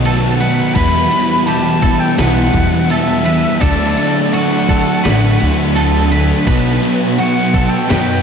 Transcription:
Already playing: upright bass B1, overdriven electric guitar B2 D#3 F#3 B3 D#4
0.04 distorted electric guitar B2 F#3 B3, clean electric guitar A4, crash
0.38 distorted electric guitar B3, clean electric guitar B4, flute F#5, crash
0.42 distorted electric guitar F#3
0.75 distorted electric guitar E2 B2 E3, upright bass E2, overdriven electric guitar E3 G3 B3 E4, clean electric guitar B4, flute B5, kick, crash
1.12 distorted electric guitar B2 E3, crash
1.47 distorted electric guitar E2 B2 E3, clean electric guitar G4, flute A5, crash
1.82 distorted electric guitar B2 E3, clean electric guitar A4, kick, crash
2.00 flute G5
2.17 upright bass B1, distorted electric guitar E2 B2 E3, overdriven electric guitar E3 G3 B3 E4, clean electric guitar B4, flute F#5, snare, crash
2.53 upright bass E2, distorted electric guitar B2 E3, kick, crash
2.90 distorted electric guitar E2 B2 E3, clean electric guitar A4, flute E5, crash
3.25 distorted electric guitar B2 E3, clean electric guitar B4, crash
3.60 upright bass D2, overdriven electric guitar D3 F#3 A3 D4, distorted electric guitar D3 A3 D4, clean electric guitar A4, flute D5, kick, crash
3.97 distorted electric guitar A3 D4, crash
4.33 distorted electric guitar D3 A3 D4, clean electric guitar F#4, flute F#5, crash
4.69 distorted electric guitar A3 D4, clean electric guitar A4, kick, crash
5.04 upright bass A1, distorted electric guitar D3 A3 D4, overdriven electric guitar D3 F#3 A3, clean electric guitar B4, snare, crash
5.08 overdriven electric guitar D4
5.40 upright bass D2, distorted electric guitar A3 D4, crash
5.75 distorted electric guitar D3 A3 D4, clean electric guitar A4, crash
6.11 distorted electric guitar A3 D4, clean electric guitar B4, crash
6.47 upright bass B1, distorted electric guitar B2 F#3 B3, overdriven electric guitar B2 F#3 B3, clean electric guitar B4, kick, crash
6.51 overdriven electric guitar D#4
6.83 distorted electric guitar F#3 B3, crash
7.16 distorted electric guitar B2, clean electric guitar F#4, flute F#5, crash
7.20 distorted electric guitar F#3 B3
7.54 distorted electric guitar F#3 B3, clean electric guitar A4, kick, crash
7.70 flute G5
7.88 upright bass F#2, overdriven electric guitar B2 F#3 B3 D#4, distorted electric guitar B2 F#3, clean electric guitar B4, snare, crash
7.92 distorted electric guitar B3

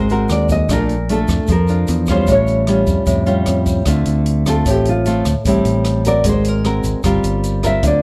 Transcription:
Already playing: fingered electric bass G#1, nylon-string guitar G#3 C5
0.09 nylon-string guitar C4 F#4 A#4, closed hi-hat, shaker
0.29 fingered electric bass D#2, nylon-string guitar D5, cross-stick, closed hi-hat, shaker
0.49 nylon-string guitar D#5, kick, closed hi-hat, shaker
0.69 fingered electric bass A#1, nylon-string guitar A#2 A3 D4 F4 A#4, kick, cross-stick, closed hi-hat, shaker
0.89 closed hi-hat, shaker
1.09 nylon-string guitar A3 D4 F4 A4, closed hi-hat
1.28 fingered electric bass F2, kick, cross-stick, closed hi-hat, shaker
1.47 fingered electric bass F2, nylon-string guitar F3, kick, closed hi-hat, shaker
1.52 nylon-string guitar A#4
1.67 nylon-string guitar D4 F4, closed hi-hat, shaker
1.87 fingered electric bass E2, closed hi-hat, shaker
2.06 nylon-string guitar G3 C#4 F4, kick, cross-stick, closed hi-hat, shaker
2.11 nylon-string guitar C5
2.27 fingered electric bass A1, nylon-string guitar A2, kick, closed hi-hat, shaker
2.32 nylon-string guitar C#5
2.47 closed hi-hat, shaker
2.67 nylon-string guitar G3 C#4 F4, cross-stick, closed hi-hat
2.87 fingered electric bass F2, kick, closed hi-hat, shaker
3.06 fingered electric bass F2, nylon-string guitar A2, kick, closed hi-hat, shaker
3.26 nylon-string guitar G3 C#4 F4, closed hi-hat, shaker
3.46 fingered electric bass F2, cross-stick, closed hi-hat
3.66 kick, closed hi-hat, shaker
3.85 fingered electric bass D2, nylon-string guitar D3 A3 C4 F4, kick, cross-stick, closed hi-hat, shaker
4.05 fingered electric bass D2, closed hi-hat, shaker
4.26 closed hi-hat
4.46 nylon-string guitar A3 C4 F4 A4, kick, cross-stick, closed hi-hat, shaker
4.66 fingered electric bass A1, nylon-string guitar A2, kick, closed hi-hat, shaker
4.70 nylon-string guitar G4
4.85 nylon-string guitar F4, closed hi-hat, shaker
5.05 nylon-string guitar A3 C4 F4, closed hi-hat, shaker
5.25 fingered electric bass D2, kick, cross-stick, closed hi-hat, shaker
5.45 fingered electric bass A1, nylon-string guitar A2 G3 C4 E4, kick, closed hi-hat, shaker
5.65 fingered electric bass A1, closed hi-hat, shaker
5.84 cross-stick, closed hi-hat
6.05 nylon-string guitar C4 F#4 A#4 D5, kick, closed hi-hat, shaker
6.24 fingered electric bass G#1, nylon-string guitar G#3, kick, closed hi-hat, shaker
6.29 nylon-string guitar C5
6.44 nylon-string guitar A#4, closed hi-hat, shaker
6.64 nylon-string guitar C4 F#4 A#4, cross-stick, closed hi-hat
6.84 fingered electric bass G#1, kick, closed hi-hat, shaker
7.03 fingered electric bass G1, nylon-string guitar G3 C4 F4 A#4, kick, cross-stick, closed hi-hat, shaker
7.24 fingered electric bass G1, closed hi-hat, shaker
7.44 closed hi-hat, shaker
7.63 nylon-string guitar C4 F4 A#4 E5, kick, cross-stick, closed hi-hat, shaker
7.83 fingered electric bass D2, nylon-string guitar D3, kick, closed hi-hat, shaker
7.87 nylon-string guitar D5

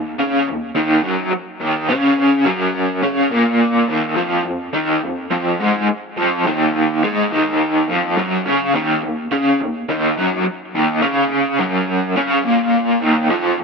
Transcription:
Already playing: overdriven electric guitar D#2
0.19 overdriven electric guitar C#3 C#4
0.47 overdriven electric guitar D#2
0.75 overdriven electric guitar D#2 D#3
1.03 overdriven electric guitar F#2 F#3
1.32 muted overdriven electric guitar stroke
1.60 overdriven electric guitar D#2 D#3
1.88 overdriven electric guitar C#3 C#4
2.45 overdriven electric guitar F#2 F#3
3.02 overdriven electric guitar C#3 C#4
3.31 overdriven electric guitar A#2 A#3
3.88 overdriven electric guitar D#2 D#3
4.16 overdriven electric guitar F2 F3
4.44 overdriven electric guitar F2
4.73 overdriven electric guitar D#2 D#3
5.02 overdriven electric guitar F2
5.31 overdriven electric guitar F2 F3
5.59 overdriven electric guitar G#2 G#3
5.89 muted overdriven electric guitar stroke
6.17 overdriven electric guitar F2 F3
6.46 overdriven electric guitar D#2 D#3
7.03 overdriven electric guitar G#2 G#3
7.31 overdriven electric guitar D#2 D#3
7.88 overdriven electric guitar F2 F3
8.17 overdriven electric guitar F#2 F#3
8.45 overdriven electric guitar C#3 C#4
8.74 overdriven electric guitar D#2 D#3
9.03 overdriven electric guitar D#2
9.32 overdriven electric guitar C#3 C#4
9.60 overdriven electric guitar D#2
9.89 overdriven electric guitar D#2 D#3
10.17 overdriven electric guitar F#2 F#3
10.46 muted overdriven electric guitar stroke
10.75 overdriven electric guitar D#2 D#3
11.02 overdriven electric guitar C#3 C#4
11.59 overdriven electric guitar F#2 F#3
12.16 overdriven electric guitar C#3 C#4
12.45 overdriven electric guitar A#2 A#3
13.01 overdriven electric guitar D#2 D#3
13.30 overdriven electric guitar F2 F3
13.59 overdriven electric guitar F2

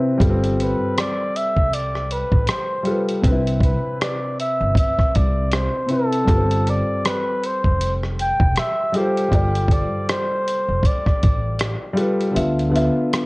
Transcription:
Already playing: felt piano C3 C4 E4 B4
0.18 upright bass G1, felt piano G3 F4 A4, kick, closed hi-hat
0.23 felt piano B4
0.30 felt piano C4
0.44 closed hi-hat
0.60 flugelhorn B4, closed hi-hat
0.98 flugelhorn D5, cross-stick, closed hi-hat
1.36 flugelhorn E5, closed hi-hat
1.57 upright bass C2, kick
1.73 flugelhorn D5, closed hi-hat
1.95 cross-stick
2.11 flugelhorn B4, closed hi-hat
2.32 upright bass A1, kick
2.47 flugelhorn C5, cross-stick, closed hi-hat
2.83 felt piano G3 F4 A4, closed hi-hat
2.89 felt piano B4
3.09 closed hi-hat
3.22 upright bass C2, felt piano C3 C4 D4, kick, closed hi-hat
3.28 felt piano B4
3.32 felt piano E4
3.47 closed hi-hat
3.60 flugelhorn B4, kick, closed hi-hat
4.01 flugelhorn D5, cross-stick, closed hi-hat
4.40 flugelhorn E5, closed hi-hat
4.61 upright bass G1
4.75 flugelhorn E5, kick, closed hi-hat
4.99 kick, cross-stick
5.15 upright bass C2, flugelhorn D5, kick, closed hi-hat
5.52 flugelhorn C5, cross-stick, closed hi-hat
5.86 felt piano C3 C4, closed hi-hat
5.91 felt piano E4 B4, flugelhorn A4
6.13 closed hi-hat
6.24 felt piano G3 F4, kick, closed hi-hat
6.28 upright bass G1, felt piano A4 B4
6.37 felt piano C4
6.51 closed hi-hat
6.67 flugelhorn D5, closed hi-hat
7.05 flugelhorn B4, cross-stick, closed hi-hat
7.44 flugelhorn C5, closed hi-hat
7.64 upright bass F1, kick
7.81 closed hi-hat
8.03 cross-stick
8.19 flugelhorn G5, closed hi-hat
8.40 upright bass E1, kick
8.56 flugelhorn E5, cross-stick, closed hi-hat
8.92 felt piano G3 F4 A4, closed hi-hat
8.96 flugelhorn G4, felt piano C5
9.17 closed hi-hat
9.28 felt piano G3 F4, kick
9.32 upright bass G1, felt piano A4 D5, closed hi-hat
9.55 closed hi-hat
9.68 kick, closed hi-hat
9.73 flugelhorn D5
10.09 flugelhorn C5, cross-stick, closed hi-hat
10.48 closed hi-hat
10.68 upright bass F1
10.83 flugelhorn D5, kick, closed hi-hat
11.06 kick, cross-stick
11.23 upright bass A1, kick, closed hi-hat
11.59 cross-stick, closed hi-hat
11.93 felt piano G3 F4 A4, closed hi-hat
11.99 felt piano B4
12.21 closed hi-hat
12.31 felt piano D3 B3 F4
12.36 upright bass D2, felt piano E5, closed hi-hat
12.59 closed hi-hat
12.69 felt piano D3 B3
12.73 felt piano F4 E5, closed hi-hat
13.13 cross-stick, closed hi-hat

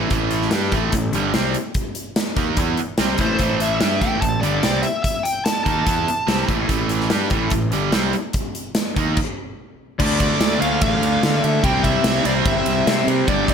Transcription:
Already playing: fingered electric bass A1, overdriven electric guitar A2 E3 A3
0.10 fingered electric bass A1, overdriven electric guitar A2 E3 A3, kick, closed hi-hat
0.31 closed hi-hat
0.42 snare
0.51 fingered electric bass G2, overdriven electric guitar G3 D4 G4, snare, closed hi-hat
0.71 fingered electric bass A1, overdriven electric guitar A2 E3 A3, kick, closed hi-hat
0.92 fingered electric bass A1, overdriven electric guitar A2 E3, kick, closed hi-hat
1.12 fingered electric bass G1, overdriven electric guitar G2 D3 G3, closed hi-hat
1.33 fingered electric bass C2, overdriven electric guitar C3 G3 C4, snare, closed hi-hat
1.54 closed hi-hat
1.74 kick, closed hi-hat
1.95 closed hi-hat
2.16 snare, closed hi-hat
2.36 fingered electric bass D#2, overdriven electric guitar D#3 A#3 D#4, kick, snare, closed hi-hat
2.57 fingered electric bass E2, overdriven electric guitar E3 B3 E4, kick, closed hi-hat
2.77 muted overdriven electric guitar stroke, muted fingered electric bass stroke, closed hi-hat
2.98 fingered electric bass C2, overdriven electric guitar C3 G3 C4, snare, closed hi-hat
3.18 fingered electric bass A1, overdriven electric guitar A2 E3 A3, lead electric guitar C5, kick, closed hi-hat
3.39 fingered electric bass A1, overdriven electric guitar A2 E3 A3, kick, closed hi-hat
3.60 lead electric guitar E5, closed hi-hat
3.81 fingered electric bass G2, overdriven electric guitar G3 D4 G4, snare, closed hi-hat
4.01 fingered electric bass A1, overdriven electric guitar A2 E3 A3, lead electric guitar G5, kick, closed hi-hat
4.21 fingered electric bass A1, overdriven electric guitar A2 E3, lead electric guitar A5, kick, closed hi-hat
4.41 fingered electric bass G1, overdriven electric guitar G2 D3 G3, lead electric guitar D5, closed hi-hat
4.63 fingered electric bass C2, overdriven electric guitar C3 G3 C4, snare, closed hi-hat
4.83 lead electric guitar E5, closed hi-hat
5.03 lead electric guitar E5, kick, closed hi-hat
5.23 lead electric guitar G5, closed hi-hat
5.45 lead electric guitar A5, snare, closed hi-hat
5.64 fingered electric bass D#2, overdriven electric guitar D#3 A#3 D#4, lead electric guitar A5, kick, closed hi-hat
5.87 fingered electric bass E2, overdriven electric guitar E3 B3 E4, kick, closed hi-hat
6.08 muted overdriven electric guitar stroke, muted fingered electric bass stroke, closed hi-hat
6.27 fingered electric bass C2, overdriven electric guitar C3 G3 C4, snare, closed hi-hat
6.49 fingered electric bass A1, overdriven electric guitar A2 E3 A3, kick, closed hi-hat
6.69 fingered electric bass A1, overdriven electric guitar A2 E3 A3, kick, closed hi-hat
6.89 closed hi-hat
7.00 snare
7.10 fingered electric bass G2, overdriven electric guitar G3 D4 G4, snare, closed hi-hat
7.30 fingered electric bass A1, overdriven electric guitar A2 E3 A3, kick, closed hi-hat
7.50 fingered electric bass A1, overdriven electric guitar A2 E3, kick, closed hi-hat
7.72 fingered electric bass G1, overdriven electric guitar G2 D3 G3, closed hi-hat
7.92 fingered electric bass C2, overdriven electric guitar C3 G3 C4, snare, closed hi-hat
8.13 closed hi-hat
8.33 kick, closed hi-hat
8.55 closed hi-hat
8.75 snare, closed hi-hat
8.96 fingered electric bass D#2, overdriven electric guitar D#3 A#3 D#4, kick, closed hi-hat
9.17 kick, crash
9.99 fingered electric bass D2, overdriven electric guitar D3 A3 D4, lead electric guitar D5, kick, crash
10.20 lead electric guitar D5, kick, ride
10.40 fingered electric bass D2, snare, ride
10.51 snare
10.61 fingered electric bass D2, overdriven electric guitar D3 A3 D4, lead electric guitar F5, ride
10.81 fingered electric bass A1, lead electric guitar F5, kick, ride
11.02 fingered electric bass D2, ride
11.23 overdriven electric guitar D3 A3 D4, fingered electric bass D3, snare, ride
11.40 fingered electric bass D3, lead electric guitar E5, ride
11.63 fingered electric bass C2, overdriven electric guitar C3 G3 C4, lead electric guitar G5, kick, ride
11.83 lead electric guitar E5, kick, ride
12.04 fingered electric bass C2, snare, ride
12.25 fingered electric bass C2, overdriven electric guitar C3 G3 C4, lead electric guitar D5, ride
12.45 fingered electric bass G1, lead electric guitar E5, kick, ride
12.66 fingered electric bass C2, ride
12.86 overdriven electric guitar C3 G3 C4, fingered electric bass C3, snare, ride
13.07 fingered electric bass C3, ride
13.28 fingered electric bass G1, overdriven electric guitar G2 D3 G3, lead electric guitar D5, kick, ride
13.48 lead electric guitar D5, kick, ride

